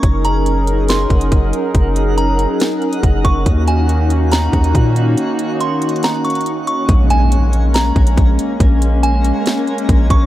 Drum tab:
HH |x-----------x-----------x-----------x-----------x-----------x-----x-----x-----------x-----------|x-----------x-----------x-----------x-----------x-----------x-----x-----x-----------x-----------|x-----------x-----------x-----------x-----------x-----------x-----x-----x-----------x-----------|x-----------x-----------x-----------x---x---x---x-----------x--x--x--x--x-----------x-----------|
SD |------------------------------------------------o-----------------------------------------------|------------------------------------------------o-----------------------------------------------|------------------------------------------------o-----------------------------------------------|------------------------------------------------o-----------------------------------------------|
BD |o-----------------------------------------------------------o-----------o-----------------------|o-----------------------------------------------------------------------o-----------o-----------|o-----------------------------------------------------------o-----------o-----------------------|------------------------------------------------------------------------------------------------|

HH |x-----------x-----------x-----------x-----------x-----------x-----x-----x-----------x-----------|x-----------x-----------x-----------x-----------x-----------x-----x-----x-----------x-----------|
SD |------------------------------------------------o-----------------------------------------------|------------------------------------------------o-----------------------------------------------|
BD |o-----------------------------------------------------------o-----------o-----------------------|o-----------------------------------------------------------------------o-----------o-----------|